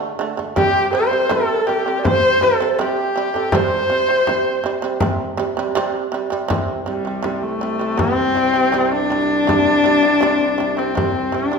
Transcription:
Already playing: D3 A3
0.19 D3 A3
0.37 D3 A3, frame drum
0.56 C3 G3 G4, frame drum
0.92 C3 G3 C5
1.00 A4
1.07 C3 C5
1.13 G3
1.29 C3 G3 A4, frame drum
1.67 C3 G3 G4, frame drum
1.86 C3 G3
1.99 D5
2.04 C3 G3 C5, frame drum
2.41 C3 G3 A4, frame drum
2.60 C3 G3, frame drum
2.73 A4
2.79 C3 G3 G4, frame drum
3.16 C3 G3
3.34 C3 G3 A4, frame drum
3.52 C3 G3 C5, frame drum
3.90 C3 G3
4.09 C3 G3
4.27 C3 G3, frame drum
4.64 C3 G3, frame drum
4.82 C3 G3
5.00 C3 G3, frame drum
5.37 C3 G3, frame drum
5.57 C3 G3, frame drum
5.75 C3 G3, frame drum
6.12 C3 G3
6.30 C3 G3, frame drum
6.48 C2 C3 G3, frame drum
6.86 C3 G3
7.05 C3 G3
7.23 C3 G3, frame drum
7.42 A3
7.61 C3 G3
7.79 C3 G3
7.98 C3 G3 C4, frame drum
8.35 C3 G3, frame drum
8.54 C3 G3
8.72 C3 G3, frame drum
8.92 D4
9.10 C3 G3, frame drum
9.47 C3 G3, frame drum
9.84 C3 G3
10.03 C3 G3
10.21 C3 G3, frame drum
10.58 C3 G3, frame drum
10.77 C3 G3 C4
10.95 C3 G3, frame drum
11.32 C3 G3 D4, frame drum
11.52 C3 G3

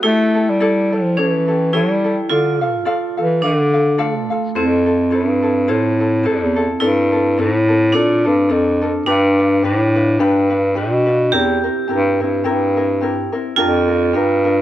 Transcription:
Already playing: F#4
0.02 A3 E4 G4 A4 D5
0.35 E4 G4 A4
0.49 G3
0.60 E4 G4 A4 D5
0.92 F3 E4 G4 A4
1.17 E3 C#4 E4 G4 A4 C#5
1.48 E4 G4 A4
1.73 G3 E4 G4 A4 C#5
2.04 E4 G4 A4
2.29 D3 F4 A4 D5 F5
2.61 F4 A4 F5
2.85 F4 A4 D5 F5
3.17 E3 F4 A4 F5
3.42 D3 D4 F4 A4 D5 F5
3.74 F4 A4 F5
3.98 A3 F4 A4 D5 F5
4.30 F4 A4 F5
4.55 F2 C4 E4 F4 A4 C5
4.86 E4 F4 A4
5.10 G2 E4 F4 A4 C5
5.43 E4 F4 A4
5.68 A2 E4 F4 A4 C5
6.00 E4 F4 A4
6.23 E4 F4 A4 C5
6.28 E2
6.56 E4 F4 A4
6.80 G2 C4 E4 A4 A#4 D5
7.12 C4 A4 A#4
7.37 A2 C4 A4 A#4 D5
7.68 C4 A4 A#4
7.93 A#2 C4 D4 A4 A#4 D5
8.24 G2 C4 A4 A#4
8.49 F2 C4 A4 A#4 D5
8.82 C4 A4 A#4
9.06 G2 D4 F4 G4 B4
9.38 D4 F4 B4
9.63 A2 D4 F4 G4 B4
9.96 D4 F4 B4
10.19 G2 D4 F4 G4 B4
10.50 D4 F4 B4
10.75 B2 D4 F4 G4 B4
11.06 D4 F4 B4
11.32 E2 C4 E4 G4 A#4
11.64 C4 E4 A#4
11.88 G2 C4 E4 G4 A#4
12.20 G2 C4 E4 A#4
12.44 G2 C4 E4 G4 A#4
12.77 C4 E4 A#4
13.01 C4 E4 G4 A#4
13.32 C4 E4 A#4
13.56 F2 D4 F4 G4 A#4
13.88 D4 F4 A#4
14.13 G2 D4 F4 G4 A#4
14.44 D4 F4 A#4

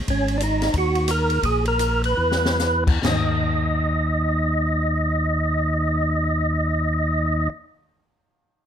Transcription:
0.07 G#1 C#4, kick, ride
0.28 ride
0.38 D4, hi-hat pedal, ride
0.43 D#4
0.62 snare, ride
0.73 D#2, kick, ride
0.78 F#4
0.95 ride
1.08 A#4, cross-stick, hi-hat pedal, ride
1.30 ride
1.43 A#1 G#4, kick, ride
1.65 A#4, ride
1.79 hi-hat pedal, ride
2.04 B4, ride
2.17 E2
2.32 snare
2.45 snare
2.59 snare, hi-hat pedal
2.87 kick, crash
3.03 D#2 D#5, snare, floor tom, crash

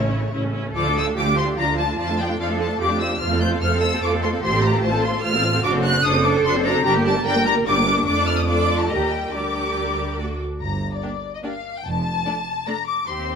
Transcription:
Already playing: A1 C#3 E4 C#5
0.01 A3 C#4
0.11 C#4 E4
0.22 A3 C#4
0.33 A1 C#4 E4
0.43 A3 C#4
0.54 C#4 E4
0.66 A3 C#4
0.75 D2 F3 F4 A4 D5 D6
0.86 A3 D4 A4 F5
0.97 F3 F4 D5 E6
1.07 A3 D4 A4 F5
1.17 D2 F3 F4 G4 D5 D6
1.27 A3 D4 A4 F5
1.36 F3 F4 D5 C6
1.45 A3 D4 A4 F5
1.57 D2 F3 F4 D5 A#5
1.65 A3 D4 A4 F5
1.75 F3 F4 A5
1.79 F4 D5
1.87 A3 D4 A4 F5
1.97 F2 F3 F4 D5 A5
2.09 A3 D4 A4 F5
2.19 F3 F4 D5 G5
2.29 A3 D4 A4 F5
2.39 F2 F3 F4 A4 D5 F5
2.49 A3 D4 A4 F5
2.59 F3 F4 D5 A5
2.69 A3 D4 A4 F5
2.80 F2 F3 F4 G4 D5 D6
2.89 A3 D4 A4 F5
3.01 F3 F4 D5 E6
3.10 A3 D4 A4 F5
3.20 F2 A3 F4 C5 F6
3.31 C4 A4 F5
3.40 A3 F4 C5 G6
3.51 C4 A4 F5
3.61 F2 A3 F4 A4 C5 F6
3.71 C4 A4 F5
3.81 A3 F4 C5 E6
3.92 C4 A4 F5
4.01 F2 A3 F4 C5 D6
4.13 C4 A4 F5
4.22 A3 F4 C5 C6
4.32 C4 A4 F5
4.42 A1 A3 F4 G4 C5 C6
4.53 C4 A4 F5
4.62 A3 F4 C5 A#5
4.73 C4 A4 F5
4.82 A1 A3 F4 C5 A5
4.92 C4 A4 F5
5.03 A3 F4 C5 C6
5.13 C4 A4 F5
5.22 A1 A3 F4 C5 F6
5.33 C4 A4 F5
5.42 A3 F4 C5
5.53 C4 A4 F5
5.63 F#1 D4 F#4 C5 D5 D6
5.73 C4 D4 A4 C5
5.83 D4 F#4 C5 D5 F#6
5.93 C4 D4 A4 C5
6.03 F#1 D4 F#4 A4 C5 D5 D#6
6.14 C4 D4 A4 C5
6.23 D4 F#4 C5 D5 D6
6.34 C4 D4 A4 C5
6.45 F#1 D4 F#4 C5 D5 C6
6.54 C4 D4 A4 C5
6.63 D4 F#4 C5 D5 A#5
6.74 C4 D4 A4 C5
6.85 G1 G3 D4 G4 A#4 D5 A#5
6.94 A#3 G4 A#4
7.05 G3 D4 A#4 D5 A5
7.15 A#3 G4 A#4
7.25 G1 G3 D4 A#4 D5 G5
7.35 A#3 G4 A#4
7.45 G3 D4 A#4 D5 A#5
7.55 A#3 G4 A#4
7.66 G1 G3 D4 A#4 D5 D6
7.76 A#3 G4 A#4
7.86 G3 D4 A#4 D5
7.97 A#3 G4 A#4
8.06 F2 A3 D4 A4 D5 D6
8.27 F6
8.38 D#6
8.48 A3 D4 F4 A4 D5 D6
8.79 A5
8.89 D#2 G3 G4 A#4 D#5 A#5
9.10 G5
9.33 D2 G3 D4 G4 A#4 D5 D6
10.19 A3 F#4 A4 D5
10.61 G1 G2 A#5
10.94 D5
11.02 A#3 D4 G4 D5
11.35 D#5
11.43 A#3 D4 G4 D5 F5
11.77 G5
11.85 F1 F2 A5
12.25 A3 D4 A4 D5
12.67 A3 D4 A4 D5 A#5
12.87 D6
13.06 D#2 C4 G4 C5 C6

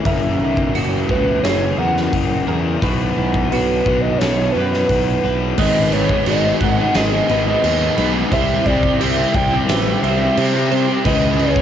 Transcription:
0.05 F#1 F#2 C#3 E3 A#3 C#4 E4 F#4 A#4 E5, kick, open hi-hat
0.39 B1 E3 A#3 E4
0.57 kick
0.74 F#1 C#3 E3 A#3 E4 F#4, open hi-hat
1.09 C#2 E3 A#3 E4 B4, kick
1.43 F#1 F#2 C#3 E3 A#3 E4 G#4 C#5, snare, open hi-hat
1.78 E2 E3 A#3 E4 A#4 F#5
1.97 snare
2.13 F#1 C#3 E3 A#3 E4, kick, open hi-hat
2.47 E2 E3 A#3 E4 A#4
2.81 B1 B2 E3 B3 E4 F#4 B4, kick, open hi-hat
3.16 B1 B3 E4 F#4
3.34 kick
3.51 B1 E3 B3 E4 F#4 B4, open hi-hat
3.84 B1 B3 E4 F#4, kick
4.01 D#5
4.18 B1 B2 E3 B3 C#5, snare, open hi-hat
4.22 E4 F#4 A4
4.52 F#2 E4 F#4 B4
4.57 B3 B4
4.73 snare
4.88 B1 E3 B3 E4 F#4, kick, open hi-hat
5.23 B1 B3 E4 F#4 B4
5.58 G#1 G#2 D#3 G#3 B3 D#4 G#4 B4 D#5, kick, crash
5.92 D#3 G#3 B3 D#4 G#4 C#5, crash
6.09 G#3 B3 D#4 G#4, kick
6.26 G#1 G#2 D#3 G#3 B3 D#4 F#4 G#4 D#5, crash
6.44 G#3 B3 D#4
6.61 G#1 G#3 B3 D#4 G#4 F#5, muted overdriven electric guitar stroke, kick, crash
6.77 G#3 B3 D#4 G#4
6.94 G#1 G#4 D#5, snare, crash
7.13 G#3 B3 D#4 G#4
7.28 G#1 D#3 G#3 B3 D#4 G#4 B4 D#5, crash
7.45 G#3 B3 D#4 G#4
7.62 D#2 G#2 D#3 G#3 B3 D#4 G#4, crash
7.79 G#3 B3 D#4 G#4
7.96 B1 D#3 G#3 B3 D#4 G#4 B4, crash
8.13 G#3 B3 D#4
8.30 C2 C3 G3 C4 E4 G4 C5 E5, kick, crash
8.65 C2 C3 G3 C4 E4 G4 D5, kick, crash
8.83 C4 E4 G4, kick
8.99 C2 C3 G3 C4 E4 G4 E5, crash
9.17 G3 C4 E4
9.34 C2 G3 C4 E4 G4 G5, muted overdriven electric guitar stroke, kick, crash
9.51 G3 C4 E4 G4
9.69 A1 B4 E5, snare, crash
9.86 C4 E4 G4
10.02 C2 C3 G3 C4 E4 G4 C5 E5, crash
10.19 G3 C4 E4 G4
10.35 C3 G3 C4 E4, crash
10.39 G4
10.52 G3 C4 E4 G4
10.69 C3 G3 C4 E4 G4 C5, crash
10.86 G3 C4 E4
11.04 C#2 C#3 G#3 C#4 E4 G#4 B4 D#5, kick, crash
11.38 C#3 G#3 C#4 E4 G#4 C#5, crash
11.56 C#4 E4 G#4, kick

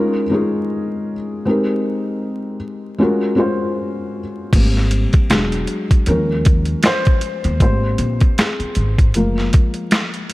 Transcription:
Already playing: G#3 C#4 D#4 F4 A#4
0.30 G#3 C#4 D#4 F4
0.34 G#4
1.45 G#3 C4 D#4 G4 A#4
2.98 G#3 C#4 F4 F#4
3.03 A#4
3.35 G#3 C#4 F4 F#4
3.40 C5
4.53 G#1 G3 A#3 C4, kick, closed hi-hat, crash
4.77 snare
4.91 closed hi-hat
5.13 kick, closed hi-hat
5.30 E1 F#3 G#3 D4 G#4, snare, closed hi-hat
5.52 closed hi-hat
5.67 closed hi-hat
5.91 kick, closed hi-hat
6.06 D#2 F3 G#3 C#4 A#4, closed hi-hat
6.45 kick, closed hi-hat
6.65 closed hi-hat
6.83 C5, snare, closed hi-hat
7.05 kick, closed hi-hat
7.21 closed hi-hat
7.44 D#2, closed hi-hat
7.60 G#1 A#3 C4 G4 C5, kick, closed hi-hat
7.98 A#1, closed hi-hat
8.20 kick, closed hi-hat
8.38 G#4, snare, closed hi-hat
8.60 muted upright bass stroke, closed hi-hat
8.75 G#1, closed hi-hat
8.99 kick, closed hi-hat
9.14 F#1 F3 G#3 A#3 A#4, closed hi-hat
9.38 snare
9.53 kick, closed hi-hat
9.74 closed hi-hat
9.91 snare, closed hi-hat
10.14 closed hi-hat
10.30 closed hi-hat

